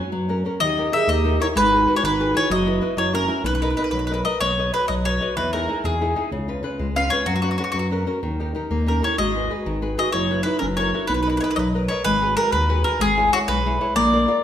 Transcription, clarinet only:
0.61 G4
0.94 G#4
1.10 G4
1.42 E4
1.59 D#4
1.97 E4
2.06 D#4
2.37 E4
2.52 F#4
2.99 E4
3.14 C#4
3.45 D#4
8.88 C#4
9.03 E4
9.19 F#4
9.99 F#4
10.13 E4
10.45 D#4
10.60 C#4
10.76 E4
11.08 D#4

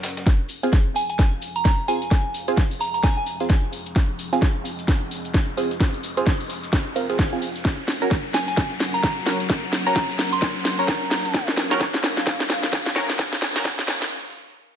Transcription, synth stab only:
0.63 C4 F4 G#4
1.88 C4 F4 G#4
2.48 C4 F4 G#4
3.40 C4 F4 G#4
4.33 C4 F4 G#4
5.57 C4 F4 G#4
6.17 C4 F4 G#4
6.96 C4 F4 A#4
7.10 C4 F4 G#4
7.33 C4 F4 G#4
8.02 C#4 F#4 A#4
9.27 C#4 F#4 A#4
9.86 C#4 F#4 A#4
10.79 C#4 F#4 A#4
11.71 C#4 F#4 A#4
12.96 C#4 F#4 A#4
13.56 C#4 F#4 A#4

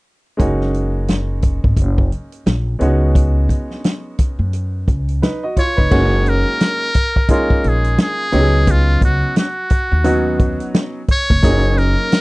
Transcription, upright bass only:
0.40 F#1
1.64 G#1
1.76 F#1
2.46 A#1
2.81 C#2
4.39 F#2
4.88 C#2
5.78 F1
5.92 F#1
7.65 A#1
8.33 C#2
9.01 C#2
9.92 D#2
11.30 F1
11.43 F#1

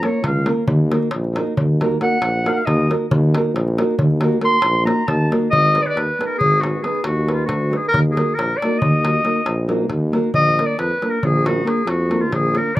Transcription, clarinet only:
0.05 C#5
0.26 F5
2.02 F#5
2.47 F5 F#5
2.56 F5
2.66 D#5
4.45 C6
4.85 A#5
5.08 A5
5.51 D#5
5.82 B4 D5
5.89 D5
5.96 B4
6.26 A#4
6.38 G#4
6.58 F#4 G#4
6.82 G#4
7.04 F#4
7.34 F4
7.46 F#4
7.76 G#4
7.89 A#4
8.11 G#4
8.35 A#4
8.57 D5
8.79 D#5
10.35 D#5
10.66 D5
10.79 B4
11.10 A#4
11.25 G#4
11.46 F#4
11.68 G#4
11.88 F#4
12.21 F4
12.34 G#4
12.57 A#4
12.75 D5

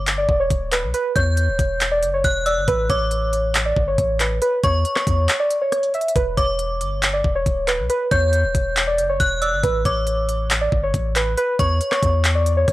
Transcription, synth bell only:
1.16 G6
2.24 F#6
2.46 E6
2.90 D6
4.64 C#6
6.37 D6
8.11 G6
9.20 F#6
9.42 E6
9.85 D6
11.59 C#6

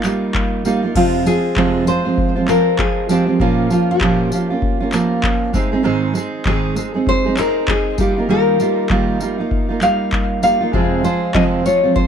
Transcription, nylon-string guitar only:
0.97 F4
1.27 G#4
1.88 C5
2.49 A#4
2.79 G#4
3.11 G4
3.41 F4
3.72 F4
3.91 G4
6.47 G#4
7.09 C5
7.39 A#4
7.70 G#4
8.00 G4
8.30 A#4
8.92 G#4
9.83 F5
10.43 F5
11.04 C5
11.35 D#5
11.66 C#5
11.96 C5

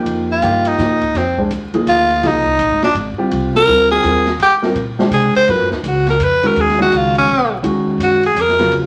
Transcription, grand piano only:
Already playing: F3 A#3 D#4 G4
0.42 F3 A#3 D#4 G4
0.78 F3 A#3 D#4 G4
1.38 G#3 D4 G4 C5
1.74 F3 A#3 D#4 G#4
2.23 F3 A#3 D#4 G#4
3.18 G3 C4 F4 G4
3.67 G3 C4 F4 A#4
4.03 G3 C4 F4 A#4
4.62 G3 C4 F4 A#4
4.99 G#3 D4 G4 C5
5.48 F#3 B3 F4 A#4
6.43 D#3 G#3 C#4 F#4
6.78 D#3 G#3 C#4 F#4
7.63 D#3 G#3 C#4 F#4
8.59 C#3 F#3 B3 F4

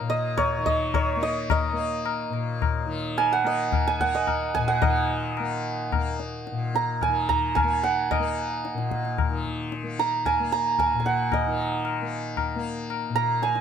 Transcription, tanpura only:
Already playing: D#3 A#3
0.00 A#2
0.58 D#3
1.16 A#3
1.73 A#3
2.30 A#2
2.86 D#3
3.44 A#3
4.01 A#3
4.57 A#2
4.83 D#3
5.39 A#3
5.95 A#3
6.52 A#2
7.08 D#3
7.64 A#3
8.19 A#3
8.74 A#2
9.29 D#3
9.83 A#3
10.40 A#3
10.93 A#2
11.46 D#3
12.02 A#3
12.56 A#3
13.10 A#2

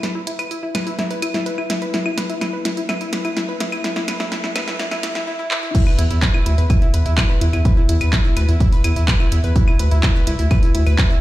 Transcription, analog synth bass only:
5.98 E2
6.10 E2
6.46 D2
6.58 E2
6.94 E2
7.06 E2
7.41 E2
7.53 E2
7.89 E2
8.01 E2
8.37 D2
8.49 E2
8.84 E2
8.96 E2
9.32 E2
9.44 E2
9.80 D2
9.92 D2
10.27 C2
10.39 D2
10.75 D2
10.87 D2

